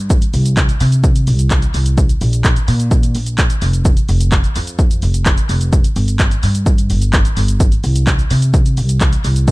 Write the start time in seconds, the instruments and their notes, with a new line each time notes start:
Already playing: upright bass G2
0.10 kick, shaker
0.22 closed hi-hat, shaker
0.34 upright bass C2, open hi-hat, shaker
0.46 closed hi-hat, shaker
0.57 kick, clap, shaker
0.69 closed hi-hat, shaker
0.80 upright bass C3, open hi-hat, shaker
0.92 closed hi-hat, shaker
1.04 kick, shaker
1.16 closed hi-hat, shaker
1.27 upright bass C2, open hi-hat, shaker
1.39 closed hi-hat, shaker
1.51 kick, clap, shaker
1.62 closed hi-hat, shaker
1.74 upright bass C2, open hi-hat, shaker
1.86 closed hi-hat, shaker
1.98 kick, shaker
2.09 closed hi-hat, shaker
2.21 upright bass A#1, open hi-hat, shaker
2.33 closed hi-hat, shaker
2.44 kick, clap, shaker
2.56 closed hi-hat, shaker
2.68 upright bass A#2, open hi-hat, shaker
2.80 closed hi-hat, shaker
2.91 kick, shaker
3.03 closed hi-hat, shaker
3.15 upright bass A#1, open hi-hat, shaker
3.26 closed hi-hat, shaker
3.38 kick, clap, shaker
3.50 closed hi-hat, shaker
3.62 upright bass F1, open hi-hat, shaker
3.73 closed hi-hat, shaker
3.85 kick, shaker
3.97 closed hi-hat, shaker
4.09 upright bass F1, open hi-hat, shaker
4.21 closed hi-hat, shaker
4.32 kick, clap, shaker
4.44 closed hi-hat, shaker
4.56 upright bass F2, open hi-hat, shaker
4.67 closed hi-hat, shaker
4.79 kick, shaker
4.91 closed hi-hat, shaker
5.02 upright bass F1, open hi-hat, shaker
5.14 closed hi-hat, shaker
5.26 kick, clap, shaker
5.38 closed hi-hat, shaker
5.49 upright bass F1, open hi-hat, shaker
5.61 closed hi-hat, shaker
5.73 kick, shaker
5.84 closed hi-hat, shaker
5.96 upright bass G1, open hi-hat, shaker
6.08 closed hi-hat, shaker
6.19 kick, clap, shaker
6.31 closed hi-hat, shaker
6.43 upright bass G2, open hi-hat, shaker
6.55 closed hi-hat, shaker
6.66 kick, shaker
6.78 closed hi-hat, shaker
6.90 upright bass G1, open hi-hat, shaker
7.02 closed hi-hat, shaker
7.13 kick, clap, shaker
7.25 closed hi-hat, shaker
7.37 upright bass G1, open hi-hat, shaker
7.48 closed hi-hat, shaker
7.60 kick, shaker
7.72 closed hi-hat, shaker
7.84 upright bass C2, open hi-hat, shaker
7.96 closed hi-hat, shaker
8.07 kick, clap, shaker
8.19 closed hi-hat, shaker
8.31 upright bass C3, open hi-hat, shaker
8.42 closed hi-hat, shaker
8.54 kick, shaker
8.66 closed hi-hat, shaker
8.77 upright bass C2, open hi-hat, shaker
8.89 closed hi-hat, shaker
9.01 kick, clap, shaker
9.13 closed hi-hat, shaker
9.24 upright bass C2, open hi-hat, shaker
9.36 closed hi-hat, shaker
9.48 kick, shaker